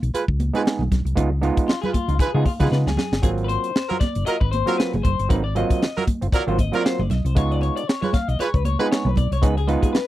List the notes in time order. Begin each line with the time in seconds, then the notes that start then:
0.02 B1, closed hi-hat
0.14 G#3 F4 B4, closed hi-hat
0.28 C#2, kick
0.40 closed hi-hat, muted conga, high conga
0.54 G#3 B3 D#4 F4 G#4 B4, closed hi-hat
0.66 snare, muted conga
0.79 B1, high conga, low conga
0.92 B1, kick, snare, closed hi-hat, low conga
1.05 C2, closed hi-hat
1.16 C#2 G#3 B3 D#4 F4, kick, closed hi-hat
1.42 G#3 B3 D#4 F4, closed hi-hat, muted conga
1.57 kick, closed hi-hat
1.68 F4, snare, muted conga
1.82 G#3 F4 G#4 B4, closed hi-hat, low conga
1.93 F4, muted fingered electric bass stroke, kick, closed hi-hat, muted conga, high conga
2.08 C#2 D#4 F4, closed hi-hat
2.19 G#3 D#4 F4 G#4 B4, kick, closed hi-hat, muted conga
2.34 C#3 G#3 B3 D#4 F4 G#4
2.46 F4, kick, open hi-hat, muted conga, high conga
2.60 C#3 G#3 B3 D#4 F4 G#4 B4, kick, closed hi-hat
2.71 C#3 B4, snare, muted conga
2.86 C#2 G#4, snare, high conga, low conga
2.97 G#4, snare, muted conga, low conga
3.12 G1, snare
3.22 G#1 F#3 A#3 C4 F4 G#4, kick, closed hi-hat, muted conga
3.38 closed hi-hat
3.44 B4 C5
3.49 closed hi-hat, muted conga
3.64 closed hi-hat
3.76 snare, muted conga
3.89 F#3 F4 A#4, closed hi-hat, low conga
4.00 D5, muted fingered electric bass stroke, kick, snare, closed hi-hat, muted conga, high conga
4.15 F#1, closed hi-hat
4.26 F#3 F4 A#4 D#5, muted fingered electric bass stroke, closed hi-hat
4.40 G#1 B4, kick
4.51 C5, closed hi-hat, muted conga, high conga
4.66 F#3 A#3 C4 F4 A#4, closed hi-hat
4.77 B4, snare, muted conga
4.93 F#1 G#4, closed hi-hat, high conga, low conga
5.03 F#1 C5, kick, closed hi-hat, low conga
5.19 G1, closed hi-hat
5.29 G#1 F#3 A#3 C4 D#4 B4, kick, closed hi-hat, muted conga
5.44 D5
5.55 F#3 A#3 C4 F4 D#5, closed hi-hat
5.70 kick, closed hi-hat
5.83 snare, muted conga
5.96 F#3 F4 A#4, closed hi-hat, low conga
6.07 muted fingered electric bass stroke, kick, closed hi-hat, muted conga, high conga
6.21 F#1 C4 F4, closed hi-hat
6.32 F#3 C4 F4 A#4 D5, kick, closed hi-hat
6.47 G#1 F#3 A#3 C4 F4 C5, closed hi-hat
6.59 D#5, kick, closed hi-hat, high conga
6.72 F#3 A#3 C4 F4 A#4 D5, closed hi-hat
6.83 C5 D5, snare, muted conga
6.99 F#1 D5, high conga, low conga
7.10 B1 D#5, snare, closed hi-hat, muted conga, low conga
7.25 C2 C5, closed hi-hat
7.35 C#2 G#3 B3 D#4 F4 C#5, kick, closed hi-hat, muted conga
7.52 D5, closed hi-hat
7.61 C#5, closed hi-hat, muted conga
7.76 D5, closed hi-hat
7.87 C#5, snare
8.02 G#3 F4 B4 C#5, closed hi-hat, low conga
8.13 F5, muted fingered electric bass stroke, kick, snare, closed hi-hat, muted conga, high conga
8.28 B1 D#5, closed hi-hat
8.39 G#3 F4 B4 C#5, muted fingered electric bass stroke, closed hi-hat, muted conga
8.54 C#2 B4, kick, closed hi-hat
8.65 C#5, closed hi-hat, high conga
8.79 G#3 B3 D#4 F4 G#4 B4, closed hi-hat
8.92 C#5, snare
9.05 B1 B4, high conga, low conga
9.16 B1 D5, kick, closed hi-hat, low conga
9.31 C2 C#5, closed hi-hat
9.42 C#2 G#3 B3 D#4 G#4 B4, kick, closed hi-hat
9.57 G#4, closed hi-hat
9.67 G#3 B3 D#4 F4 B4, closed hi-hat
9.82 G#4, kick, closed hi-hat, high conga
9.93 B4, snare